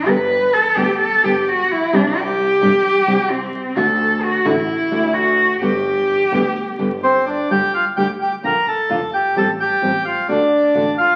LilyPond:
<<
  \new Staff \with { instrumentName = "Bandoneon" } { \time 4/4 \key g \major \tempo 4 = 130 r1 | r1 | r1 | r2. <c' c''>8 <d' d''>8 |
\key g \minor <g' g''>8 <f' f''>8 <g' g''>8 <g' g''>8 <bes' bes''>8 <a' a''>4 <g' g''>8 | <a' a''>8 <g' g''>4 <f' f''>8 <d' d''>4. <f' f''>8 | }
  \new Staff \with { instrumentName = "Cello" } { \time 4/4 \key g \major b'4 a'8 g'8 a'8 g'16. g'32 fis'8 e'8 | d'8 g'2~ g'8 c'4 | a'4 fis'8 e'4. fis'4 | g'2. r4 |
\key g \minor r1 | r1 | }
  \new Staff \with { instrumentName = "Nylon-string guitar" } { \time 4/4 \key g \major <d g b g'>8 r4 <d g b g'>8 r8 <d g b g'>8 r4 | <c g c' d' g'>8 r4 <c g c' d' g'>8 r8 <c g c' d' g'>8 r4 | <d a d' fis'>8 r4 <d a d' fis'>8 r8 <d a d' fis'>8 r4 | <d g b g'>8 r4 <d g b g'>8 r8 <d g b g'>8 r4 |
\key g \minor <d g bes d' g'>8 r8 <d g bes d' g'>8 r8 <d bes d' f'>8 r8 <d bes d' f'>8 r8 | <f g c' g'>8 r8 <f g c' g'>8 r8 <d a d' fis'>8 r8 <d a d' fis'>8 r8 | }
  \new Staff \with { instrumentName = "Double bass" } { \clef bass \time 4/4 \key g \major g,,4. d,8 r8 g,,4 bes,,8 | c,4. g,,8 r8 c,4 c,8 | d,4. a,,8 r8 d,4. | g,,4. d,8 r8 g,,4. |
\key g \minor g,,8 r8 d,8 r8 bes,,8 r8 f,,8 g,,8 | a,,8 r8 a,,8 r8 d,8 r8 a,,8 aes,,8 | }
>>